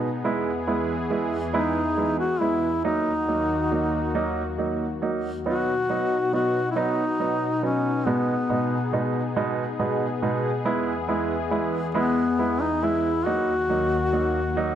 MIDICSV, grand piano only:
0, 0, Header, 1, 2, 480
1, 0, Start_track
1, 0, Tempo, 868307
1, 128, Time_signature, 6, 3, 24, 8
1, 8154, End_track
2, 0, Start_track
2, 0, Title_t, "Grand piano"
2, 0, Program_c, 0, 0
2, 134, Note_on_c, 0, 56, 68
2, 136, Note_on_c, 0, 59, 52
2, 138, Note_on_c, 0, 64, 72
2, 273, Note_off_c, 0, 56, 0
2, 274, Note_off_c, 0, 59, 0
2, 275, Note_off_c, 0, 64, 0
2, 372, Note_on_c, 0, 56, 58
2, 374, Note_on_c, 0, 59, 48
2, 374, Note_on_c, 0, 64, 57
2, 511, Note_off_c, 0, 56, 0
2, 512, Note_off_c, 0, 59, 0
2, 513, Note_off_c, 0, 64, 0
2, 609, Note_on_c, 0, 56, 52
2, 611, Note_on_c, 0, 59, 47
2, 614, Note_on_c, 0, 64, 57
2, 750, Note_off_c, 0, 56, 0
2, 751, Note_off_c, 0, 59, 0
2, 752, Note_off_c, 0, 64, 0
2, 848, Note_on_c, 0, 56, 63
2, 850, Note_on_c, 0, 59, 62
2, 852, Note_on_c, 0, 64, 78
2, 990, Note_off_c, 0, 56, 0
2, 991, Note_off_c, 0, 59, 0
2, 992, Note_off_c, 0, 64, 0
2, 1091, Note_on_c, 0, 56, 50
2, 1094, Note_on_c, 0, 59, 44
2, 1096, Note_on_c, 0, 64, 56
2, 1231, Note_off_c, 0, 56, 0
2, 1233, Note_off_c, 0, 59, 0
2, 1234, Note_off_c, 0, 64, 0
2, 1330, Note_on_c, 0, 56, 53
2, 1333, Note_on_c, 0, 59, 48
2, 1335, Note_on_c, 0, 64, 60
2, 1471, Note_off_c, 0, 56, 0
2, 1473, Note_off_c, 0, 59, 0
2, 1474, Note_off_c, 0, 64, 0
2, 1572, Note_on_c, 0, 54, 65
2, 1573, Note_on_c, 0, 58, 52
2, 1574, Note_on_c, 0, 63, 71
2, 1713, Note_off_c, 0, 54, 0
2, 1714, Note_off_c, 0, 58, 0
2, 1714, Note_off_c, 0, 63, 0
2, 1813, Note_on_c, 0, 54, 52
2, 1815, Note_on_c, 0, 58, 51
2, 1815, Note_on_c, 0, 63, 50
2, 1954, Note_off_c, 0, 54, 0
2, 1955, Note_off_c, 0, 58, 0
2, 1956, Note_off_c, 0, 63, 0
2, 2053, Note_on_c, 0, 54, 51
2, 2053, Note_on_c, 0, 58, 49
2, 2056, Note_on_c, 0, 63, 54
2, 2195, Note_off_c, 0, 54, 0
2, 2195, Note_off_c, 0, 58, 0
2, 2197, Note_off_c, 0, 63, 0
2, 2292, Note_on_c, 0, 54, 61
2, 2292, Note_on_c, 0, 58, 62
2, 2295, Note_on_c, 0, 63, 71
2, 2436, Note_off_c, 0, 54, 0
2, 2436, Note_off_c, 0, 58, 0
2, 2437, Note_off_c, 0, 63, 0
2, 2533, Note_on_c, 0, 58, 48
2, 2534, Note_on_c, 0, 54, 50
2, 2536, Note_on_c, 0, 63, 54
2, 2677, Note_off_c, 0, 58, 0
2, 2678, Note_off_c, 0, 54, 0
2, 2679, Note_off_c, 0, 63, 0
2, 2774, Note_on_c, 0, 54, 53
2, 2775, Note_on_c, 0, 58, 46
2, 2778, Note_on_c, 0, 63, 56
2, 2919, Note_off_c, 0, 54, 0
2, 2919, Note_off_c, 0, 58, 0
2, 2921, Note_off_c, 0, 63, 0
2, 3017, Note_on_c, 0, 54, 59
2, 3018, Note_on_c, 0, 59, 51
2, 3020, Note_on_c, 0, 63, 57
2, 3161, Note_off_c, 0, 54, 0
2, 3162, Note_off_c, 0, 59, 0
2, 3163, Note_off_c, 0, 63, 0
2, 3258, Note_on_c, 0, 54, 50
2, 3259, Note_on_c, 0, 59, 45
2, 3262, Note_on_c, 0, 63, 57
2, 3402, Note_off_c, 0, 54, 0
2, 3403, Note_off_c, 0, 59, 0
2, 3404, Note_off_c, 0, 63, 0
2, 3497, Note_on_c, 0, 54, 45
2, 3500, Note_on_c, 0, 59, 46
2, 3501, Note_on_c, 0, 63, 57
2, 3642, Note_off_c, 0, 54, 0
2, 3644, Note_off_c, 0, 59, 0
2, 3644, Note_off_c, 0, 63, 0
2, 3735, Note_on_c, 0, 54, 64
2, 3738, Note_on_c, 0, 59, 57
2, 3741, Note_on_c, 0, 63, 68
2, 3881, Note_off_c, 0, 54, 0
2, 3882, Note_off_c, 0, 59, 0
2, 3884, Note_off_c, 0, 63, 0
2, 3977, Note_on_c, 0, 54, 49
2, 3981, Note_on_c, 0, 59, 49
2, 3981, Note_on_c, 0, 63, 58
2, 4122, Note_off_c, 0, 54, 0
2, 4124, Note_off_c, 0, 59, 0
2, 4124, Note_off_c, 0, 63, 0
2, 4216, Note_on_c, 0, 54, 53
2, 4219, Note_on_c, 0, 59, 49
2, 4221, Note_on_c, 0, 63, 54
2, 4361, Note_off_c, 0, 54, 0
2, 4363, Note_off_c, 0, 59, 0
2, 4363, Note_off_c, 0, 63, 0
2, 4458, Note_on_c, 0, 47, 63
2, 4458, Note_on_c, 0, 56, 57
2, 4458, Note_on_c, 0, 59, 58
2, 4461, Note_on_c, 0, 63, 61
2, 4602, Note_off_c, 0, 47, 0
2, 4602, Note_off_c, 0, 56, 0
2, 4602, Note_off_c, 0, 59, 0
2, 4604, Note_off_c, 0, 63, 0
2, 4696, Note_on_c, 0, 47, 54
2, 4696, Note_on_c, 0, 56, 48
2, 4698, Note_on_c, 0, 59, 52
2, 4699, Note_on_c, 0, 63, 56
2, 4841, Note_off_c, 0, 47, 0
2, 4841, Note_off_c, 0, 56, 0
2, 4842, Note_off_c, 0, 59, 0
2, 4843, Note_off_c, 0, 63, 0
2, 4935, Note_on_c, 0, 47, 55
2, 4937, Note_on_c, 0, 56, 54
2, 4938, Note_on_c, 0, 59, 50
2, 4938, Note_on_c, 0, 63, 60
2, 5080, Note_off_c, 0, 47, 0
2, 5081, Note_off_c, 0, 56, 0
2, 5082, Note_off_c, 0, 59, 0
2, 5082, Note_off_c, 0, 63, 0
2, 5175, Note_on_c, 0, 47, 65
2, 5176, Note_on_c, 0, 56, 61
2, 5177, Note_on_c, 0, 59, 58
2, 5179, Note_on_c, 0, 63, 75
2, 5320, Note_off_c, 0, 47, 0
2, 5321, Note_off_c, 0, 56, 0
2, 5321, Note_off_c, 0, 59, 0
2, 5322, Note_off_c, 0, 63, 0
2, 5414, Note_on_c, 0, 47, 57
2, 5415, Note_on_c, 0, 56, 51
2, 5415, Note_on_c, 0, 59, 49
2, 5415, Note_on_c, 0, 63, 62
2, 5558, Note_off_c, 0, 47, 0
2, 5559, Note_off_c, 0, 56, 0
2, 5559, Note_off_c, 0, 59, 0
2, 5559, Note_off_c, 0, 63, 0
2, 5650, Note_on_c, 0, 47, 57
2, 5651, Note_on_c, 0, 56, 53
2, 5652, Note_on_c, 0, 59, 56
2, 5653, Note_on_c, 0, 63, 64
2, 5795, Note_off_c, 0, 47, 0
2, 5795, Note_off_c, 0, 56, 0
2, 5796, Note_off_c, 0, 59, 0
2, 5797, Note_off_c, 0, 63, 0
2, 5888, Note_on_c, 0, 56, 67
2, 5890, Note_on_c, 0, 64, 72
2, 5891, Note_on_c, 0, 59, 66
2, 6032, Note_off_c, 0, 56, 0
2, 6034, Note_off_c, 0, 59, 0
2, 6034, Note_off_c, 0, 64, 0
2, 6126, Note_on_c, 0, 56, 56
2, 6128, Note_on_c, 0, 59, 53
2, 6128, Note_on_c, 0, 64, 65
2, 6271, Note_off_c, 0, 56, 0
2, 6272, Note_off_c, 0, 59, 0
2, 6272, Note_off_c, 0, 64, 0
2, 6363, Note_on_c, 0, 59, 50
2, 6364, Note_on_c, 0, 56, 58
2, 6365, Note_on_c, 0, 64, 65
2, 6509, Note_off_c, 0, 59, 0
2, 6510, Note_off_c, 0, 56, 0
2, 6510, Note_off_c, 0, 64, 0
2, 6603, Note_on_c, 0, 56, 72
2, 6606, Note_on_c, 0, 59, 57
2, 6608, Note_on_c, 0, 64, 71
2, 6750, Note_off_c, 0, 56, 0
2, 6751, Note_off_c, 0, 59, 0
2, 6752, Note_off_c, 0, 64, 0
2, 6849, Note_on_c, 0, 56, 51
2, 6850, Note_on_c, 0, 59, 53
2, 6851, Note_on_c, 0, 64, 59
2, 6993, Note_off_c, 0, 56, 0
2, 6993, Note_off_c, 0, 59, 0
2, 6994, Note_off_c, 0, 64, 0
2, 7090, Note_on_c, 0, 56, 54
2, 7092, Note_on_c, 0, 59, 49
2, 7095, Note_on_c, 0, 64, 58
2, 7233, Note_off_c, 0, 56, 0
2, 7233, Note_off_c, 0, 59, 0
2, 7235, Note_off_c, 0, 64, 0
2, 7329, Note_on_c, 0, 54, 58
2, 7330, Note_on_c, 0, 58, 54
2, 7332, Note_on_c, 0, 63, 70
2, 7472, Note_off_c, 0, 54, 0
2, 7472, Note_off_c, 0, 58, 0
2, 7473, Note_off_c, 0, 63, 0
2, 7570, Note_on_c, 0, 54, 51
2, 7571, Note_on_c, 0, 58, 47
2, 7573, Note_on_c, 0, 63, 59
2, 7712, Note_off_c, 0, 54, 0
2, 7713, Note_off_c, 0, 58, 0
2, 7714, Note_off_c, 0, 63, 0
2, 7807, Note_on_c, 0, 54, 56
2, 7810, Note_on_c, 0, 58, 47
2, 7811, Note_on_c, 0, 63, 53
2, 7951, Note_off_c, 0, 54, 0
2, 7953, Note_off_c, 0, 58, 0
2, 7953, Note_off_c, 0, 63, 0
2, 8053, Note_on_c, 0, 54, 66
2, 8053, Note_on_c, 0, 58, 56
2, 8055, Note_on_c, 0, 63, 71
2, 8154, Note_off_c, 0, 54, 0
2, 8154, Note_off_c, 0, 58, 0
2, 8154, Note_off_c, 0, 63, 0
2, 8154, End_track
0, 0, End_of_file